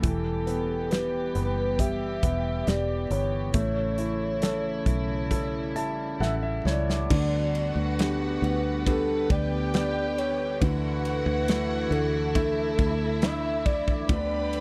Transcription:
Already playing: B3
0.03 E1 E3 G3 G4 A4, kick, closed hi-hat
0.47 B3, closed hi-hat
0.90 G4 B4, snare, closed hi-hat
1.35 F#1 B3, closed hi-hat
1.79 G4 E5, kick, closed hi-hat
2.23 E1 B3, kick, closed hi-hat
2.67 E1 G4 D5, snare, closed hi-hat
3.10 G1 B3 C#5, closed hi-hat
3.54 A1 C#3 A3 E4, kick, closed hi-hat
3.98 E4, closed hi-hat
4.42 A4, snare, closed hi-hat
4.86 B1 E4, kick, closed hi-hat
5.30 G3 A4, kick, closed hi-hat
5.76 A1 E4 A5, closed hi-hat
6.20 A1 A4 E5 F#5, snare
6.43 E5
6.65 C#2 E4 C#5 D5, snare
6.90 snare
7.10 D2 D3 G3 B3 F#4 B4 F#5, kick, crash
7.55 ride
7.75 D2
7.99 B3 D4 G4, snare, ride
8.42 D2, ride
8.87 B3 D4 G4 A4, kick, ride
9.29 D2 G4 D5 G5, kick, ride
9.74 B3 D4 G4, snare, ride
10.18 C#5, ride
10.61 D2 D3 E3 A3 E4 F#4 B4 F#5, kick, ride
11.05 ride
11.26 D2
11.48 A3 D4 E4, snare, ride
11.91 D2 A4, ride
12.35 A3 D4 E4 E5, kick, ride
12.79 D2, kick, ride
13.22 A3 D4 E4 E5, snare, ride
13.65 D5, kick, ride
13.88 kick
14.09 D2 D3 G3 B3 G4 B4 B5, kick, ride
14.53 ride

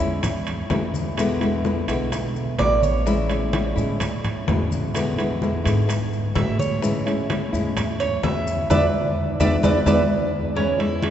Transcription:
0.00 E2 G#3 C#4 E4, high conga, maracas
0.23 muted nylon-string guitar stroke, high bongo, high conga, low conga, high timbale, maracas
0.47 high bongo, high conga, high timbale, maracas
0.70 E2 E3 G#3 C#4 E4, high bongo, low bongo, high conga, high timbale, low timbale, maracas
0.94 high bongo, high conga, maracas
1.17 B2 D3 G#3 B3 E4, high bongo, high conga, high timbale, maracas
1.41 D3 G#3 B3 E4, high bongo, high conga, high timbale, maracas
1.64 D3 G#3 B3 E4, high bongo, high conga, low timbale, maracas
1.88 B1 D3 G#3 B3 E4, high timbale, maracas
2.12 muted nylon-string guitar stroke, high bongo, high conga, high timbale, maracas
2.35 high conga, maracas
2.58 A1 D3 G#3 B3 E4 D5, high bongo, low bongo, high conga, high timbale, low timbale, maracas
2.82 C#5, high bongo, high conga, maracas
3.06 E3 G#3 C#4 E4, high bongo, high conga, maracas
3.29 G#3 C#4 E4, high bongo, high conga, high timbale, maracas
3.52 E3 G#3 C#4 E4, high bongo, high conga, high timbale, low timbale, maracas
3.75 A2 G#3 C#4 E4, high conga, maracas
4.00 muted nylon-string guitar stroke, high bongo, high conga, low conga, high timbale, maracas
4.24 high bongo, high conga, low conga, high timbale, maracas
4.47 E2 E3 G#3 C#4 E4, high bongo, low bongo, high conga, high timbale, low timbale, maracas
4.71 high bongo, high conga, maracas
4.94 B2 D3 G#3 B3 E4, high bongo, high conga, high timbale, maracas
5.18 D3 G#3 B3 E4, high bongo, high conga, high timbale, maracas
5.41 D3 G#3 B3 E4, high bongo, high conga, low timbale, maracas
5.64 G#2 D3 G#3 B3 E4, high timbale, maracas
5.88 muted nylon-string guitar stroke, high bongo, high conga, high timbale, maracas
6.12 high conga, maracas
6.34 A2 D3 G#3 B3 E4 E5, high bongo, low bongo, high conga, high timbale, low timbale, maracas
6.59 C#5, high bongo, high conga, maracas
6.82 E3 G#3 C#4 E4, high bongo, high conga, maracas
7.06 G#3 C#4 E4, high bongo, high conga, high timbale, maracas
7.29 E3 G#3 C#4 E4, high bongo, high conga, high timbale, low timbale, maracas
7.53 E2 G#3 C#4 E4, high conga, maracas
7.77 muted nylon-string guitar stroke, high bongo, high conga, low conga, high timbale, maracas
8.00 C#5, high bongo, high conga, high timbale, maracas
8.23 E2 E3 G#3 C#4 E4 E5, high bongo, low bongo, high conga, high timbale, low timbale, maracas
8.47 high bongo, maracas
8.70 E2 E3 G#3 B3 B4 D5 E5, high bongo, high conga, high timbale, maracas
9.39 E2 E3 G#3 B3 B4 D5 E5, high bongo, high conga, high timbale, maracas
9.63 E2 E3 G#3 B3 B4 D5 E5, high bongo, high conga, high timbale, maracas
9.86 E2 E3 G#3 B3 B4 D5 E5, high bongo, high conga, high timbale, maracas
10.55 E3 G#3 C#4 E4, high bongo, high conga
10.78 G#3 C#4 E4, high bongo, high conga, high timbale
11.02 E3 G#3 C#4 E4, high bongo, high conga, high timbale, low timbale

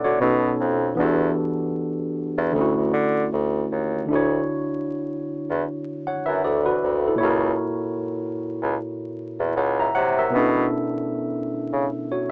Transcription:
Already playing: B2 B3 C#4 D4 E4 A4 B4 C#5 D5 E5 F#5
0.04 D3 F#4 C#5
0.19 B2 B3 C#4 D#4
0.24 A4
0.60 F2
0.95 E3 B3 D4
0.99 E2 F#4 G4
1.04 A4
2.38 E2
2.52 D2 D3 A3
2.56 C#4 E4
2.61 F#4
2.77 D2
2.93 D3
3.33 D2
3.72 D#2
4.06 D3 D4
4.10 D2 E4 F#4
4.15 C#5
5.50 E2
6.07 C#5 F#5
6.26 F#2 B4 E5
6.44 D2 A4 D5
6.66 F#4 B4
6.83 D2
7.08 E4 A4
7.16 A#2 C#5
7.20 C#2 E4 F#4
7.25 A#4
8.62 C#2
9.40 E2
9.56 C#2 C#5 F#5
9.80 E5 A#5
9.95 C3 C#5 F#5
10.19 A#4 E5
10.30 B2 B3 C#4
10.35 D4 E4 A4
11.73 C#3
12.12 F#4 C#5

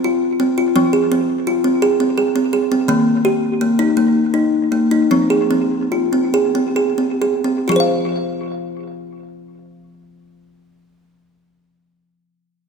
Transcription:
Already playing: F3
0.04 F4
0.40 C4
0.58 F4
0.76 F3 C4
0.93 G#4
1.12 C4
1.47 F4
1.64 C4
1.82 G#4
2.00 C4
2.18 G#4
2.36 C4
2.53 G#4
2.72 C4
2.88 D#3 A#3
3.25 G4
3.61 A#3
3.79 D#4
3.97 A#3
4.34 D#4
4.72 A#3
4.91 D#4
5.11 F3 C4
5.30 G#4
5.51 C4
5.92 F4
6.13 C4
6.34 G#4
6.55 C4
6.76 G#4
6.98 C4
7.22 G#4
7.44 C4
7.68 F3 F4
7.72 G#4
7.76 C5 F5

